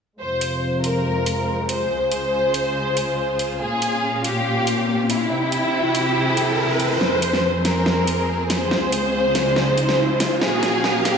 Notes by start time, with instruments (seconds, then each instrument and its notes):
0.20 string section F2 C3 G#3 F4 C5, violin section C5
0.41 closed hi-hat
0.84 violin section A#4, closed hi-hat
1.26 closed hi-hat
1.69 violin section C5, closed hi-hat
1.90 string section C#2 C#3 F4 G#4
2.12 closed hi-hat
2.54 closed hi-hat
2.97 closed hi-hat
3.39 closed hi-hat
3.61 string section A#2 A#3 C#4 F5, violin section G#4, riser
3.82 closed hi-hat
4.24 violin section G4, closed hi-hat
4.67 closed hi-hat
5.10 violin section E4, closed hi-hat
5.31 string section C3 C4 E4 G4 G5
5.52 closed hi-hat
5.95 closed hi-hat
6.37 closed hi-hat
6.80 closed hi-hat
7.01 string section F2 F3 C4 G#4 C5, violin section C5, snare, riser
7.22 closed hi-hat
7.33 snare
7.65 violin section A#4, snare, closed hi-hat
7.86 snare
8.07 closed hi-hat
8.50 violin section C5, snare, closed hi-hat
8.71 string section C#2 C#3 G#3 F4, snare
8.92 closed hi-hat
9.35 snare, closed hi-hat
9.56 snare
9.78 closed hi-hat
9.89 snare
10.20 snare, closed hi-hat
10.41 string section A#2 F3 C#4 A#4 F5, violin section G#4, snare
10.63 snare, closed hi-hat
10.84 snare
11.05 violin section G4, snare, closed hi-hat